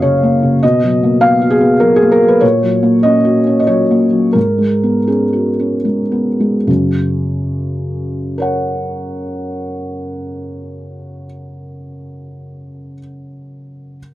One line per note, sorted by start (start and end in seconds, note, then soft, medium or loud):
0.00 0.59 F#2 soft
0.00 0.02 C#3 soft
0.00 0.34 C#3 soft
0.00 0.23 A#3 soft
0.00 0.65 C#4 soft
0.00 0.65 F#4 soft
0.00 0.02 C#5 medium
0.00 0.62 C#5 medium
0.00 0.63 D#5 medium
0.00 0.65 F5 medium
0.23 0.55 A#3 soft
0.43 0.63 C#3 soft
0.63 2.39 B2 medium
0.63 1.22 D#5 medium
0.84 1.15 F#3 soft
1.03 1.35 A#3 soft
1.21 1.54 B3 medium
1.21 1.52 F5 medium
1.42 1.74 F#4 medium
1.50 1.81 G#4 medium
1.61 1.94 B3 soft
1.80 2.14 F#3 soft
1.80 1.96 A#4 medium
1.96 2.12 G#4 medium
2.02 2.34 A#3 medium
2.12 2.27 A#4 medium
2.23 2.43 F#3 soft
2.28 2.43 B4 medium
2.41 4.31 A#2 medium
2.41 3.03 C#5 medium
2.63 2.95 F#3 soft
2.83 3.16 A#3 soft
3.03 3.38 C#4 soft
3.03 3.58 D#5 medium
3.25 3.59 F#4 soft
3.47 3.81 C#4 soft
3.59 3.67 D#5 medium
3.67 4.03 F#3 soft
3.67 4.35 C#5 medium
3.91 4.27 A#3 soft
4.10 4.34 F#3 soft
4.33 6.63 G#2 soft
4.33 5.07 A#4 medium
4.58 4.98 G#3 soft
4.83 5.23 B3 soft
5.07 5.49 C#4 soft
5.07 5.85 G#4 soft
5.33 5.74 F#4 soft
5.59 6.02 C#4 soft
5.85 6.28 G#3 soft
6.12 6.56 B3 soft
6.40 6.68 G#3 soft
6.67 11.24 F#2 soft
6.67 11.24 C#3 soft
8.38 12.95 A#4 soft
8.38 12.96 C#5 soft
8.38 12.99 F#5 soft